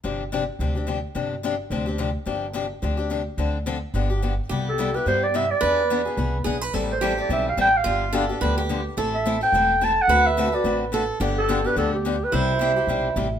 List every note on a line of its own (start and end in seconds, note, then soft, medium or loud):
0.04 0.49 G1 medium
0.04 0.22 C3 medium
0.04 0.22 F3 medium
0.04 0.23 C4 medium
0.04 0.23 D4 medium
0.04 0.23 G4 medium
0.32 0.42 C3 medium
0.32 0.42 F3 medium
0.32 0.43 C4 medium
0.32 0.43 D4 medium
0.32 0.43 G4 medium
0.59 1.04 D2 medium
0.59 0.75 C3 medium
0.59 0.75 F3 medium
0.59 0.75 C4 medium
0.59 0.75 D4 medium
0.59 0.74 G4 medium
0.75 0.86 C4 soft
0.75 0.87 D4 soft
0.75 0.87 G4 soft
0.87 0.97 C3 medium
0.87 0.98 F3 medium
0.87 0.98 C4 medium
0.87 0.98 D4 medium
0.87 0.98 G4 medium
1.15 1.60 G1 medium
1.15 1.34 C3 medium
1.15 1.34 F3 medium
1.15 1.34 C4 medium
1.15 1.34 D4 medium
1.15 1.34 G4 medium
1.43 1.54 C3 medium
1.43 1.54 F3 medium
1.43 1.54 C4 medium
1.43 1.54 D4 medium
1.43 1.54 G4 medium
1.70 2.15 D2 medium
1.70 1.86 C3 medium
1.70 1.86 F3 medium
1.70 1.87 C4 medium
1.70 1.86 D4 medium
1.70 1.85 G4 medium
1.86 1.98 C4 soft
1.86 1.98 D4 soft
1.86 1.98 G4 medium
1.98 2.09 C3 medium
1.98 2.09 F3 medium
1.98 2.09 C4 medium
1.98 2.09 D4 medium
1.98 2.09 G4 medium
2.26 2.71 G1 medium
2.26 2.45 C3 medium
2.26 2.45 F3 medium
2.26 2.45 C4 medium
2.26 2.45 D4 medium
2.26 2.45 G4 medium
2.53 2.64 C3 medium
2.53 2.65 F3 medium
2.53 2.65 C4 medium
2.53 2.65 D4 medium
2.53 2.65 G4 medium
2.82 3.27 D2 medium
2.82 2.98 C3 medium
2.82 2.98 F3 medium
2.82 2.98 C4 medium
2.82 2.97 D4 medium
2.82 2.96 G4 medium
2.97 3.09 C4 soft
2.97 3.09 D4 soft
2.97 3.10 G4 soft
3.10 3.21 C3 medium
3.10 3.21 F3 medium
3.10 3.21 C4 medium
3.10 3.21 D4 medium
3.10 3.21 G4 medium
3.37 3.83 D2 medium
3.37 3.57 D3 medium
3.37 3.57 F3 medium
3.37 3.57 C4 medium
3.37 3.57 D4 medium
3.37 3.58 A4 medium
3.66 3.77 D3 medium
3.66 3.77 F3 medium
3.66 3.77 C4 medium
3.66 3.77 D4 medium
3.66 3.77 A4 medium
3.94 4.39 G1 medium
3.94 4.09 D3 medium
3.94 4.10 F3 medium
3.94 4.10 B3 medium
3.94 4.10 D4 medium
3.94 4.09 G4 medium
4.10 4.22 B3 soft
4.10 4.22 D4 soft
4.10 4.22 G4 medium
4.22 4.33 D3 medium
4.22 4.33 F3 medium
4.22 4.33 B3 medium
4.22 4.33 D4 medium
4.22 4.33 G4 medium
4.50 4.95 C2 medium
4.50 4.69 C3 medium
4.50 4.69 G3 medium
4.50 4.69 B3 medium
4.50 4.69 E4 medium
4.50 4.70 G4 medium
4.69 4.97 A4 medium
4.78 4.88 C3 medium
4.78 4.89 G3 medium
4.78 4.89 B3 medium
4.78 4.89 E4 medium
4.78 4.89 G4 medium
4.94 5.06 B3 soft
4.94 5.06 E4 soft
4.94 5.06 G4 soft
4.94 5.07 B4 medium
5.06 5.51 G2 medium
5.06 5.25 C3 medium
5.06 5.25 G3 medium
5.06 5.25 B3 medium
5.06 5.25 E4 medium
5.06 5.26 G4 medium
5.06 5.25 C5 medium
5.23 5.37 D5 medium
5.34 5.44 C3 medium
5.34 5.45 G3 medium
5.34 5.45 B3 medium
5.34 5.45 E4 medium
5.34 5.45 G4 medium
5.34 5.52 E5 loud
5.51 6.06 D5 medium
5.61 6.07 E2 medium
5.61 5.81 E3 medium
5.61 5.81 B3 medium
5.61 5.81 D4 medium
5.61 5.81 G#4 medium
5.61 6.44 B4 medium
5.90 6.00 E3 medium
5.90 6.01 B3 medium
5.90 6.01 D4 medium
5.90 6.01 G#4 medium
6.05 6.17 B3 soft
6.05 6.17 D4 soft
6.05 6.17 G#4 soft
6.17 6.41 C2 medium
6.17 6.36 E3 medium
6.17 6.36 B3 medium
6.17 6.37 D4 medium
6.17 6.37 G#4 medium
6.45 6.70 B1 medium
6.45 6.56 E3 medium
6.45 6.56 B3 medium
6.45 6.56 D4 medium
6.45 6.56 G#4 medium
6.61 6.74 B4 medium
6.73 7.18 A1 medium
6.73 6.92 E3 medium
6.73 6.92 G3 medium
6.73 6.92 C4 medium
6.73 6.93 E4 medium
6.73 6.93 A4 medium
6.92 7.17 C5 medium
7.01 7.12 E3 medium
7.01 7.12 G3 medium
7.01 7.12 C4 medium
7.01 7.12 E4 medium
7.01 7.88 G4 medium
7.01 7.13 A4 medium
7.17 7.29 C4 soft
7.17 7.30 E4 soft
7.17 7.29 A4 medium
7.17 7.30 D5 medium
7.29 7.53 B1 medium
7.29 7.48 E3 medium
7.29 7.48 G3 medium
7.29 7.49 C4 medium
7.29 7.49 E4 medium
7.29 7.49 A4 medium
7.29 7.46 E5 medium
7.49 7.59 F5 medium
7.57 7.81 A1 medium
7.57 7.68 E3 medium
7.57 7.68 G3 medium
7.57 7.68 C4 medium
7.57 7.68 E4 medium
7.57 7.68 A4 medium
7.57 7.78 G5 loud
7.77 8.31 F5 medium
7.84 8.30 G1 medium
7.84 8.04 D3 medium
7.84 8.04 F3 medium
7.84 8.04 B3 medium
7.84 8.04 D4 medium
7.84 8.14 F4 medium
7.84 8.04 G4 medium
8.13 8.23 D3 medium
8.13 8.24 F3 medium
8.13 8.24 B3 medium
8.13 8.24 D4 medium
8.13 8.24 G4 medium
8.13 8.41 A4 medium
8.29 8.41 B3 soft
8.29 8.42 D4 soft
8.29 8.41 G4 medium
8.41 8.86 D2 medium
8.41 8.60 D3 medium
8.41 8.60 F3 medium
8.41 8.60 B3 medium
8.41 8.61 D4 medium
8.41 8.61 G4 medium
8.41 8.56 B4 medium
8.58 8.83 G4 medium
8.69 8.80 D3 medium
8.69 8.80 F3 medium
8.69 8.80 B3 medium
8.69 8.80 D4 medium
8.69 8.80 G4 medium
8.97 9.42 A1 medium
8.97 9.16 E3 medium
8.97 9.16 A3 medium
8.97 9.16 C4 medium
8.97 9.16 E4 medium
8.97 9.16 A4 medium
9.15 9.40 E5 medium
9.25 9.36 E3 medium
9.25 9.36 A3 medium
9.25 9.36 C4 medium
9.25 9.36 E4 medium
9.25 9.36 A4 medium
9.41 9.54 C4 soft
9.41 9.53 E4 soft
9.41 9.53 A4 medium
9.41 9.85 G5 medium
9.52 9.97 E1 medium
9.52 9.72 E3 medium
9.52 9.72 A3 medium
9.52 9.73 C4 medium
9.52 9.73 E4 medium
9.52 9.73 A4 medium
9.81 9.91 E3 medium
9.81 9.92 A3 medium
9.81 9.92 C4 medium
9.81 9.92 E4 medium
9.81 9.92 A4 medium
9.81 10.03 A5 medium
10.01 10.28 F#5 medium
10.08 10.53 D2 medium
10.08 10.28 D3 medium
10.08 10.28 A3 medium
10.08 10.28 C4 medium
10.08 10.28 F#4 medium
10.08 10.28 A4 medium
10.08 10.93 B4 medium
10.26 10.56 E5 medium
10.37 10.47 D3 medium
10.37 10.48 A3 medium
10.37 10.48 C4 medium
10.37 10.48 F#4 medium
10.37 10.48 A4 medium
10.52 10.64 C4 soft
10.52 10.65 F#4 soft
10.52 10.64 A4 soft
10.52 10.81 D5 medium
10.64 11.09 A1 medium
10.64 10.83 D3 medium
10.64 10.83 A3 medium
10.64 10.84 C4 medium
10.64 10.84 F#4 medium
10.64 10.84 A4 medium
10.92 11.03 D3 medium
10.92 11.03 A3 medium
10.92 11.03 C4 medium
10.92 11.03 F#4 medium
10.92 11.04 A4 medium
11.20 11.65 G1 medium
11.20 11.39 D3 medium
11.20 11.39 F3 medium
11.20 11.39 B3 medium
11.20 11.39 D4 medium
11.20 11.40 G4 medium
11.38 11.68 A4 medium
11.49 11.59 D3 medium
11.49 11.59 F3 medium
11.49 11.59 B3 medium
11.49 11.59 D4 medium
11.49 11.59 G4 medium
11.65 11.76 B3 soft
11.65 11.76 D4 soft
11.65 11.76 G4 medium
11.65 11.78 B4 medium
11.76 12.21 D2 medium
11.76 11.95 D3 medium
11.76 11.95 F3 medium
11.76 11.95 B3 medium
11.76 11.96 D4 medium
11.76 11.96 G4 medium
11.76 11.92 A4 medium
11.94 12.25 G4 medium
12.05 12.15 D3 medium
12.05 12.15 F3 medium
12.05 12.15 B3 medium
12.05 12.16 D4 medium
12.05 12.16 G4 medium
12.24 12.36 B4 medium
12.32 12.77 C2 medium
12.32 12.51 C3 medium
12.32 12.51 G3 medium
12.32 12.51 C4 medium
12.32 12.51 E4 medium
12.32 12.52 G4 medium
12.32 13.17 C5 medium
12.61 12.71 C3 medium
12.61 12.71 G3 medium
12.61 12.71 C4 medium
12.61 12.71 E4 loud
12.61 12.71 G4 medium
12.76 12.88 C4 soft
12.76 12.88 E4 soft
12.76 12.88 G4 soft
12.87 13.11 B1 medium
12.87 13.07 C3 medium
12.87 13.07 G3 medium
12.87 13.07 C4 medium
12.87 13.08 E4 medium
12.87 13.08 G4 medium
13.16 13.39 A1 medium
13.16 13.26 C3 medium
13.16 13.27 G3 medium
13.16 13.27 C4 medium
13.16 13.27 E4 medium
13.16 13.27 G4 medium